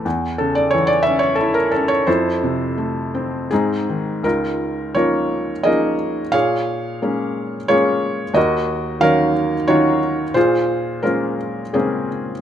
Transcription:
<<
  \new Staff \with { instrumentName = "Felt piano" } { \time 3/4 \key a \phrygian \tempo 4 = 87 r8 a'16 d''16 cis''16 d''16 e''16 cis''16 a'16 bes'16 a'16 cis''16 | <e' a' c''>2 <c' ees' aes'>4 | \key des \major <ees' f' bes'>4 <f' bes' des''>4 <aes' bes' ees''>4 | <aes' des'' f''>2 <f' aes' des''>4 |
<ges' bes' ees''>4 <bes' des'' f''>4 <f' ges' des''>4 | <f' aes' c''>4 <f' bes'>4 <c' des' aes'>4 | }
  \new Staff \with { instrumentName = "Felt piano" } { \time 3/4 \key a \phrygian e,8 cis8 e8 cis'8 e'8 cis'8 | f,8 c8 a8 c'8 aes,8 ees8 | \key des \major des,4 <f bes des' ees'>4 <f bes des' ees'>4 | bes,4 <aes bes des'>4 <aes bes des'>4 |
ees,4 <ees ges des' ees'>4 <ees ges des' ees'>4 | bes,4 <aes bes des' c''>4 <des aes bes c''>4 | }
>>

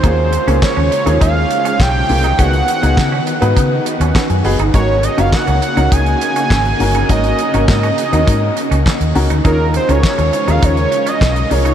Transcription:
<<
  \new Staff \with { instrumentName = "Analog synth lead" } { \time 4/4 \key gis \dorian \tempo 4 = 102 bis'4 cis''4 eis''4 g''4 | fis''2 r2 | cis''8 dis''16 eis''16 fis''4 gis''2 | dis''4 dis''2 r4 |
ais'8 bis'16 cis''4 eis''16 cis''8. dis''8. cis''8 | }
  \new Staff \with { instrumentName = "Grand piano" } { \time 4/4 \key gis \dorian << { r1 | r2 r8 dis''8 fis''16 gis''16 b''8 | r1 | r1 |
r1 | } \\ { <ais cis' eis' gis'>16 r8 <ais cis' eis' gis'>8 r8 <ais cis' eis' gis'>8. r4 <ais cis' eis' gis'>16 r16 | <b dis' fis' gis'>16 r8 <b dis' fis' gis'>8 r8 <b dis' fis' b'>8. r4 <b dis' fis' gis'>16 r16 | <cis' dis' fis' ais'>16 r8 <cis' dis' fis' ais'>8 r8 <cis' dis' fis' ais'>8. r4 <cis' dis' fis' ais'>16 r16 | <cis' dis' fis' ais'>16 r8 <cis' dis' fis' ais'>8 r8 <bis cis' dis' fis' ais'>8. r4 <cis' dis' fis' ais'>16 r16 |
<cis' eis' gis' ais'>16 r8 <cis' eis' gis' ais'>8 r8 <cis' eis' g' gis' ais'>8. r4 <cis' eis' gis' ais'>16 r16 | } >> }
  \new Staff \with { instrumentName = "Clean electric guitar" } { \time 4/4 \key gis \dorian dis'16 r8 cis'16 r16 cis'16 r16 dis'16 dis'16 r8 cis'16 cis'16 r8 dis'16 | cis'16 r8 dis'16 r16 cis'16 r16 dis'16 dis'16 r8 cis'16 cis'16 r8 dis'16 | gis16 r8 cis'16 r16 cis'16 r16 dis'16 dis'16 r8 cis'16 cis'16 r8 dis'16 | gis16 r8 cis'16 r16 cis'16 r16 dis'16 dis'16 r8 cis'16 cis'16 r8 dis'16 |
dis'16 r8 cis'16 r16 cis'16 r16 dis'16 dis'16 r8 cis'16 cis'16 r8 dis'16 | }
  \new Staff \with { instrumentName = "String machine" } { \clef bass \time 4/4 \key gis \dorian << { eis'1 | fis'1~ | fis'1~ | fis'1 |
eis'1 | } \\ { <cis gis>1 | <dis b>1 | <cis ais>1~ | <cis ais>1 |
<cis gis>1 | } >> }
  \new Staff \with { instrumentName = "Fingered electric bass" } { \clef bass \time 4/4 \key gis \dorian dis,8. cis,16 r16 dis,16 r16 dis,16 dis,8 r8 b,,8 bis,,8 | cis,8 r16 cis,16 cis8 r16 gis,16 cis8 r16 dis,16 r16 fis,16 fis,,16 g,,16 | gis,,8. fis,,16 r16 cis,16 r16 cis,16 cis,8 r8 gis,,8 g,,8 | gis,,8 r16 gis,,16 gis,8 r16 dis,16 gis,8 r16 cis,16 r16 dis,16 cis,16 d,16 |
dis,8. cis,16 r16 dis,16 r16 dis,16 dis,8 r8 b,,8 bis,,8 | }
  \new DrumStaff \with { instrumentName = "Drums" } \drummode { \time 4/4 <hh bd>8 hh16 hh16 <hc bd sn>8 hh16 hh16 <hh bd>8 hh16 hh16 <hc bd sn>8 hho16 hh16 | <hh bd>16 hh16 hh16 hh16 <hc bd sn>8 hh16 hh16 <hh bd>8 hh16 hh16 <hc bd sn>16 hh16 hho16 hh16 | <hh bd>8 hh16 hh16 <hc bd sn>16 hh16 hh16 hh16 <hh bd>16 hh16 hh16 hh16 <hc bd sn>16 hh16 hho16 hh16 | <hh bd>16 hh16 hh16 hh16 <hc bd sn>16 hh16 hh16 hh16 <hh bd>8 hh16 hh16 <hc bd sn>16 hh16 hho16 hh16 |
<hh bd>8 hh16 hh16 <hc bd sn>16 hh16 hh16 hh16 <hh bd>16 hh16 hh16 hh16 <hc bd sn>16 hh16 hho16 hh16 | }
>>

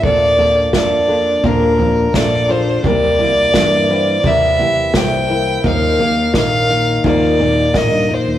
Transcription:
<<
  \new Staff \with { instrumentName = "Fiddle" } { \time 4/4 \key bes \lydian \tempo 4 = 86 d''4 d''4 bes'4 d''8 c''8 | d''2 e''4 g''4 | f''4 f''4 d''4 ees''8 c''8 | }
  \new Staff \with { instrumentName = "Steel-string acoustic guitar" } { \time 4/4 \key bes \lydian << { r8 bes4 d'8 f'4 d'8 f'8 | r8 bes4 c'8 e'4 c'8 e'8 | r8 bes4 ees'8 f'4 ees'8 f'8 | } \\ { <bes, d>4 d4. f,4. | c4 e4. c4. | ees,4 ees4. bes,4. | } >> }
  \new Staff \with { instrumentName = "Steel-string acoustic guitar" } { \time 4/4 \key bes \lydian <bes, d f bes d' a'>8 <f bes d' a'>8 <f bes d' a'>8 <f bes d' a'>8 <bes, d f bes d'>8 <f bes d'>8 <f bes d' a'>8 <f bes d' a'>8 | <c g bes e' bes'>8 <bes e' bes'>8 <g bes e' bes'>8 <bes e' bes'>8 <c g bes e' bes'>8 <bes e' bes'>8 <g bes e' bes'>8 <bes e' bes'>8 | <ees f bes ees' bes'>8 <bes ees' bes'>8 <f bes ees' bes'>8 <bes ees' bes'>8 <ees f bes ees' bes'>8 <bes ees' bes'>8 <f bes ees' bes'>8 <bes ees' bes'>8 | }
  \new Staff \with { instrumentName = "Fingered electric bass" } { \clef bass \time 4/4 \key bes \lydian bes,,4 f,4 bes,4 bes,,4 | c,4 g,4 c4 c,4 | ees,4 bes,,4 ees4 a,,16 g,16 f,16 ees,16 | }
  \new DrumStaff \with { instrumentName = "Drums" } \drummode { \time 4/4 <bd tomfh>8 tomfh8 <bd sn>4 <bd tomfh>8 tomfh8 <bd sn>4 | <bd tomfh>8 tomfh8 <bd sn>4 <bd tomfh>8 tomfh8 <bd sn>4 | <bd tomfh>8 tomfh8 <bd sn>4 <bd tomfh>8 tomfh8 <bd sn>4 | }
>>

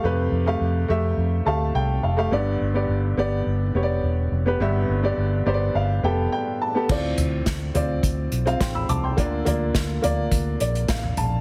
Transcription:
<<
  \new Staff \with { instrumentName = "Upright piano" } { \time 4/4 \key g \mixolydian \tempo 4 = 105 << { r2 r8 a''8 g''8 f''8 | r1 | r4. d''8 f''8 g''8 g''8 a''8 | r2. <g'' c'''>16 <b'' e'''>16 <a'' d'''>16 <g'' c'''>16~ |
<g'' c'''>16 r2 r16 d''8 f''8 a''8 | } \\ { <a g' b'>8 r16 <a g' f''>8 r16 <a g' e''>8. r16 <a g' f''>4 r16 <a g' f''>16 | <b g' d''>8 r16 <b g' d''>8 r16 <b g' d''>8. r16 <b g' cis'' d''>4 r16 <b g' b'>16 | <b g' e''>8 r16 <b g' d''>8 r16 <b g' c'' d''>8. r16 <b g' a'>4 r16 <b g' a'>16 | <c' f' d''>4~ <c' f' d''>16 r16 <c' f' d''>4 r16 <c' f' f''>4 r16 |
<bes f' d''>8 <bes f' d''>8. r16 <bes f' d''>4. r4 | } >> }
  \new Staff \with { instrumentName = "Upright piano" } { \clef bass \time 4/4 \key g \mixolydian c4. r2 r8 | <g, d>4. r2 r8 | <g, d>4. r2 r8 | a,4. r2 r8 |
d4. r2 r8 | }
  \new Staff \with { instrumentName = "Fingered electric bass" } { \clef bass \time 4/4 \key g \mixolydian f,8 f,8 f,8 f,8 f,8 d,8 c,8 f,,8 | g,,8 g,,8 g,,8 g,,8 g,,8 f,,8 e,,8 f,,8 | g,,8 g,,8 g,,8 g,,8 g,,8 f,,8 r4 | d,8 d,8 d,8 d,8 d,8 b,,8 a,,8 c,8 |
d,8 d,8 d,8 d,8 d,8 bes,,8 r8 bes,,8 | }
  \new DrumStaff \with { instrumentName = "Drums" } \drummode { \time 4/4 r4 r4 r4 r4 | r4 r4 r4 r4 | r4 r4 r4 r4 | <cymc bd>8 <hh tomfh>8 <hh bd sn>8 <hh tomfh>8 <hh bd>8 hh16 hh16 <hh bd sn>16 tomfh16 <hh tomfh>8 |
<hh bd>8 <hh tomfh>8 <hh bd sn>8 <hh tomfh>8 <hh bd>8 hh16 hh16 <hh bd sn>16 tomfh16 <hh tomfh>8 | }
>>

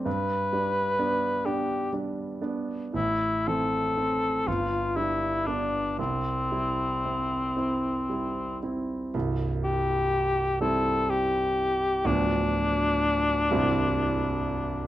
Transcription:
<<
  \new Staff \with { instrumentName = "Cor anglais" } { \time 6/8 \key c \major \tempo 4. = 41 b'4. g'8 r4 | e'8 a'4 f'8 e'8 d'8 | c'2~ c'8 r8 | r8 g'4 a'8 g'4 |
d'2. | }
  \new Staff \with { instrumentName = "Grand piano" } { \time 6/8 \key c \major g,8 <g d'>8 <b d'>8 <b d'>8 <g d'>8 <b d'>8 | a,,8 <e c'>8 c'8 g,,8 <g d'>8 <b d'>8 | c,8 <g e'>8 <c' e'>8 <c' e'>8 <g e'>8 <c' e'>8 | <c,, c,>4. <g c' e'>4. |
<d,, d, f b d'>4. <c,, c, g c' e'>4. | }
>>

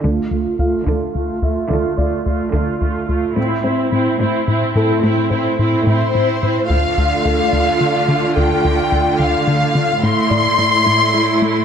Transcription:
<<
  \new Staff \with { instrumentName = "Violin section" } { \time 6/8 \key d \minor \tempo 4. = 72 r2. | r2. | r2. | r4. c''4. |
f''2. | g''4. f''4. | c'''2. | }
  \new Staff \with { instrumentName = "Grand piano" } { \time 6/8 \key d \minor r4 f''4. e''8~ | e''8 d''2~ d''8~ | d''8 <c' c''>2 <a a'>8~ | <a a'>8 c''2~ c''8 |
r4 <a a'>2 | a'2. | r8 d''2~ d''8 | }
  \new Staff \with { instrumentName = "Viola section" } { \time 6/8 \key d \minor <a f'>8 <a f'>8 <a f'>8 <a f'>8 <a f'>8 <a f'>8 | <a f'>8 <a f'>8 <a f'>8 <a f'>8 <a f'>8 <a f'>8 | <c' e'>8 <c' e'>8 <c' e'>8 <c' e'>8 <c' e'>8 <c' e'>8 | <c' e'>8 <c' e'>8 <c' e'>8 <c' e'>8 <c' e'>8 <c' e'>8 |
<a f'>2.~ | <a f'>2. | <a e'>2. | }
  \new Staff \with { instrumentName = "Cello section" } { \clef bass \time 6/8 \key d \minor d4. d4. | d4. d4. | a,4. a,4. | a,4. a,4. |
d2.~ | d2. | a,2. | }
  \new Staff \with { instrumentName = "Analog synth bass" } { \clef bass \time 6/8 \key d \minor d,8 d,8 d,8 d,8 d,8 d,8 | d,8 d,8 d,8 d,8 d,8 d,8 | a,8 a,8 a,8 a,8 a,8 a,8 | a,8 a,8 a,8 a,8 a,8 a,8 |
d,8 d,8 d,8 d,8 d8 d8 | d,8 d,8 d,8 d,8 d8 d8 | a,8 a,8 a,8 a,8 a8 a8 | }
>>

